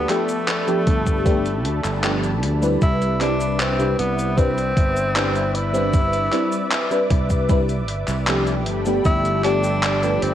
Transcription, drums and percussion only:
0.09 clap, closed hi-hat
0.29 closed hi-hat, cabasa
0.48 clap, closed hi-hat, cabasa
0.68 closed hi-hat, cabasa
0.87 kick, closed hi-hat
1.07 kick, closed hi-hat, cabasa
1.26 kick, closed hi-hat, cabasa
1.46 closed hi-hat, cabasa
1.65 closed hi-hat
1.85 clap, closed hi-hat, cabasa
2.04 clap, closed hi-hat, cabasa
2.23 closed hi-hat, cabasa
2.43 closed hi-hat
2.63 closed hi-hat, cabasa
2.82 kick, closed hi-hat, cabasa
3.02 closed hi-hat, cabasa
3.21 clap, closed hi-hat
3.41 closed hi-hat, cabasa
3.60 clap, closed hi-hat, cabasa
3.80 closed hi-hat, cabasa
3.99 closed hi-hat
4.19 closed hi-hat, cabasa
4.38 kick, closed hi-hat, cabasa
4.58 closed hi-hat, cabasa
4.77 kick, closed hi-hat
4.97 closed hi-hat, cabasa
5.16 clap, closed hi-hat, cabasa
5.35 closed hi-hat, cabasa
5.55 closed hi-hat
5.75 closed hi-hat, cabasa
5.94 kick, closed hi-hat, cabasa
6.13 closed hi-hat, cabasa
6.33 clap, closed hi-hat
6.52 closed hi-hat, cabasa
6.72 clap, closed hi-hat, cabasa
6.91 closed hi-hat, cabasa
7.10 kick, closed hi-hat
7.30 kick, closed hi-hat, cabasa
7.49 kick, closed hi-hat, cabasa
7.69 closed hi-hat, cabasa
7.88 closed hi-hat
8.08 clap, closed hi-hat, cabasa
8.28 clap, closed hi-hat, cabasa
8.47 closed hi-hat, cabasa
8.66 closed hi-hat
8.86 closed hi-hat, cabasa
9.05 kick, closed hi-hat, cabasa
9.25 closed hi-hat, cabasa
9.44 clap, closed hi-hat
9.64 closed hi-hat, cabasa
9.83 clap, closed hi-hat, cabasa
10.03 closed hi-hat, cabasa
10.22 closed hi-hat

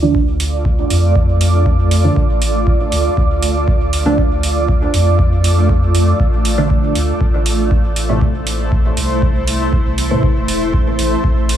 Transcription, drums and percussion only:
0.15 kick
0.40 open hi-hat
0.65 kick
0.90 open hi-hat
1.16 kick
1.41 open hi-hat
1.66 kick
1.91 open hi-hat
2.16 kick
2.42 open hi-hat
2.67 kick
2.92 open hi-hat
3.17 kick
3.42 open hi-hat
3.68 kick
3.93 open hi-hat
4.18 kick
4.43 open hi-hat
4.69 kick
4.94 open hi-hat
5.19 kick
5.44 open hi-hat
5.69 kick
5.95 open hi-hat
6.20 kick
6.45 open hi-hat
6.70 kick
6.95 open hi-hat
7.21 kick
7.46 open hi-hat
7.71 kick
7.96 open hi-hat
8.21 kick
8.47 open hi-hat
8.72 kick
8.97 open hi-hat
9.22 kick
9.48 open hi-hat
9.73 kick
9.98 open hi-hat
10.23 kick
10.48 open hi-hat
10.74 kick
10.99 open hi-hat
11.24 kick
11.49 open hi-hat

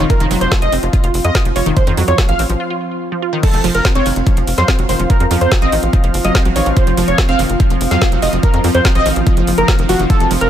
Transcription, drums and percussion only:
0.10 kick, closed hi-hat
0.20 closed hi-hat
0.31 open hi-hat
0.41 closed hi-hat
0.52 kick, snare, closed hi-hat
0.62 closed hi-hat
0.72 open hi-hat
0.83 closed hi-hat
0.93 kick, closed hi-hat
1.04 closed hi-hat
1.14 open hi-hat
1.25 closed hi-hat
1.35 kick, snare, closed hi-hat
1.45 closed hi-hat
1.56 open hi-hat
1.66 closed hi-hat
1.77 kick, closed hi-hat
1.87 closed hi-hat
1.97 open hi-hat
2.08 closed hi-hat
2.18 kick, snare, closed hi-hat
2.29 closed hi-hat
2.39 open hi-hat
2.50 closed hi-hat
3.43 kick, closed hi-hat, crash
3.54 closed hi-hat
3.64 open hi-hat
3.75 closed hi-hat
3.85 kick, snare, closed hi-hat
3.95 closed hi-hat
4.06 open hi-hat
4.16 closed hi-hat
4.27 kick, closed hi-hat
4.37 closed hi-hat
4.47 open hi-hat
4.58 snare, closed hi-hat
4.68 kick, snare, closed hi-hat
4.79 closed hi-hat
4.89 open hi-hat
5.00 closed hi-hat
5.10 kick, closed hi-hat
5.20 closed hi-hat
5.31 open hi-hat
5.41 closed hi-hat
5.52 kick, snare, closed hi-hat
5.62 closed hi-hat
5.72 open hi-hat
5.83 closed hi-hat
5.93 kick, closed hi-hat
6.04 closed hi-hat
6.14 open hi-hat
6.25 closed hi-hat
6.35 kick, snare, closed hi-hat
6.45 closed hi-hat
6.56 open hi-hat
6.66 closed hi-hat
6.77 kick, closed hi-hat
6.87 closed hi-hat
6.97 open hi-hat
7.08 closed hi-hat
7.18 kick, snare, closed hi-hat
7.29 closed hi-hat
7.39 open hi-hat
7.50 closed hi-hat
7.60 kick, closed hi-hat
7.70 closed hi-hat
7.81 open hi-hat
7.91 snare, closed hi-hat
8.02 kick, snare, closed hi-hat
8.12 closed hi-hat
8.22 open hi-hat
8.33 closed hi-hat
8.43 kick, closed hi-hat
8.54 closed hi-hat
8.64 open hi-hat
8.74 closed hi-hat
8.85 kick, snare, closed hi-hat
8.95 closed hi-hat
9.06 open hi-hat
9.16 closed hi-hat
9.27 kick, closed hi-hat
9.37 closed hi-hat
9.47 open hi-hat
9.58 closed hi-hat
9.68 kick, snare, closed hi-hat
9.79 closed hi-hat
9.89 open hi-hat
10.00 closed hi-hat
10.10 kick, closed hi-hat, ride
10.20 closed hi-hat
10.31 open hi-hat, ride
10.41 closed hi-hat

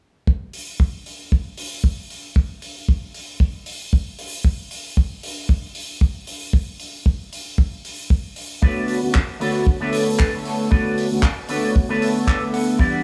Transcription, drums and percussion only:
0.27 kick
0.53 open hi-hat
0.80 kick
1.06 open hi-hat
1.32 kick
1.57 open hi-hat
1.84 kick
2.10 open hi-hat
2.36 kick
2.62 open hi-hat
2.89 kick
3.14 open hi-hat
3.40 kick
3.66 open hi-hat
3.93 kick
4.19 open hi-hat
4.45 kick
4.71 open hi-hat
4.97 kick
5.23 open hi-hat
5.49 kick
5.75 open hi-hat
6.01 kick
6.27 open hi-hat
6.53 kick
6.80 open hi-hat
7.06 kick
7.33 open hi-hat
7.58 kick
7.85 open hi-hat
8.10 kick
8.36 open hi-hat
8.63 kick
8.88 open hi-hat
9.15 kick, clap
9.41 open hi-hat
9.67 kick
9.93 open hi-hat
10.19 kick, clap
10.45 open hi-hat
10.72 kick
10.98 open hi-hat
11.23 kick, clap
11.49 open hi-hat
11.76 kick
12.02 open hi-hat
12.27 kick, clap
12.54 open hi-hat
12.79 kick

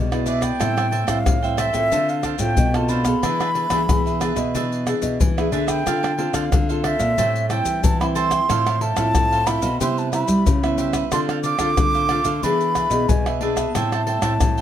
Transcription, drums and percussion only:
0.12 pandeiro, tamborim, maracas
0.26 pandeiro, maracas
0.42 pandeiro, tamborim, maracas, surdo
0.61 pandeiro, tamborim, maracas, surdo
0.78 pandeiro, tamborim, maracas
0.92 pandeiro
1.08 pandeiro, tamborim, maracas, surdo
1.26 pandeiro, tamborim, maracas, surdo
1.44 pandeiro, maracas
1.58 pandeiro, tamborim, maracas
1.74 pandeiro, maracas, surdo
1.92 pandeiro, maracas, surdo
2.09 pandeiro, maracas
2.23 pandeiro, tamborim, maracas, surdo
2.39 pandeiro, maracas, surdo
2.57 pandeiro, maracas, surdo
2.74 pandeiro, tamborim, maracas
2.89 pandeiro, maracas
3.05 pandeiro, tamborim, maracas, surdo
3.23 pandeiro, tamborim, maracas, surdo
3.41 pandeiro, tamborim, maracas
3.55 pandeiro
3.70 pandeiro, tamborim, maracas, surdo
3.89 pandeiro, tamborim, maracas, surdo
4.07 pandeiro, maracas
4.21 pandeiro, tamborim, maracas
4.36 pandeiro, maracas, surdo
4.55 pandeiro, maracas, surdo
4.72 pandeiro, maracas
4.87 pandeiro, tamborim, maracas
5.02 pandeiro, maracas, surdo
5.20 pandeiro, maracas, surdo
5.38 pandeiro, tamborim, maracas
5.52 pandeiro, maracas
5.68 pandeiro, tamborim, maracas, surdo
5.87 pandeiro, tamborim, maracas, surdo
6.04 pandeiro, tamborim, maracas
6.18 pandeiro
6.34 pandeiro, tamborim, maracas, surdo
6.52 pandeiro, tamborim, maracas, surdo
6.70 pandeiro, maracas
6.84 pandeiro, tamborim
7.00 pandeiro, maracas, surdo
7.18 pandeiro, maracas, surdo
7.36 pandeiro, maracas
7.50 pandeiro, tamborim, maracas
7.65 pandeiro, maracas, surdo
7.84 pandeiro, maracas, surdo
8.01 pandeiro, tamborim, maracas
8.16 pandeiro, maracas
8.31 pandeiro, tamborim, maracas, surdo
8.50 pandeiro, tamborim, maracas, surdo
8.67 pandeiro, tamborim, maracas
8.81 pandeiro
8.97 pandeiro, tamborim, maracas, surdo
9.15 pandeiro, tamborim, maracas, surdo
9.32 pandeiro, maracas
9.47 pandeiro, tamborim, maracas
9.62 pandeiro, maracas, surdo
9.81 pandeiro, maracas, surdo
9.98 pandeiro, maracas
10.13 pandeiro, tamborim, maracas
10.28 pandeiro, maracas, surdo
10.46 pandeiro, maracas, surdo
10.64 pandeiro, tamborim, maracas
10.78 pandeiro, maracas
10.93 pandeiro, tamborim, maracas, surdo
11.12 pandeiro, tamborim, maracas, surdo
11.29 pandeiro, tamborim, maracas
11.44 pandeiro, maracas
11.59 pandeiro, tamborim, maracas, surdo
11.77 pandeiro, tamborim, maracas, surdo
11.94 pandeiro, maracas
12.09 pandeiro, tamborim
12.24 pandeiro, maracas, surdo
12.43 pandeiro, maracas, surdo
12.61 pandeiro, maracas
12.75 pandeiro, tamborim, maracas, surdo
12.91 pandeiro, maracas, surdo
13.09 pandeiro, maracas, surdo
13.26 pandeiro, tamborim, maracas
13.41 pandeiro
13.57 pandeiro, tamborim, maracas, surdo
13.75 pandeiro, tamborim, maracas, surdo
13.92 pandeiro, tamborim, maracas
14.07 pandeiro
14.22 pandeiro, tamborim, maracas, surdo
14.41 pandeiro, tamborim, maracas, surdo
14.58 pandeiro, maracas

